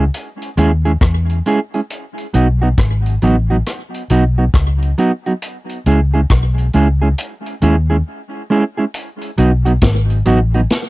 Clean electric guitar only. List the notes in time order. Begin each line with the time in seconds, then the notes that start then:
0.57 G#3 C#4 E4 G#4
0.85 G#3 C#4 E4 G#4
1.46 G#3 C#4 E4 G#4
1.74 G#3 C#4 E4 G#4
2.34 F#3 B3 D#4 F#4
2.62 F#3 B3 D#4 F#4
3.22 F#3 B3 D#4 F#4
3.50 F#3 B3 D#4 F#4
4.10 F#3 B3 D#4 F#4
4.38 F#3 B3 D#4 F#4
4.98 F#3 B3 D#4 F#4
5.26 F#3 B3 D#4 F#4
5.86 G#3 C#4 E4 G#4
6.14 G#3 C#4 E4 G#4
6.74 G#3 C#4 E4 G#4
7.02 G#3 C#4 E4 G#4
7.62 G#3 C#4 E4 G#4
7.90 G#3 C#4 E4 G#4
8.50 G#3 C#4 E4 G#4
8.77 G#3 C#4 E4 G#4
9.38 F#3 B3 D#4 F#4
9.65 F#3 B3 D#4 F#4
10.26 F#3 B3 D#4 F#4
10.54 F#3 B3 D#4 F#4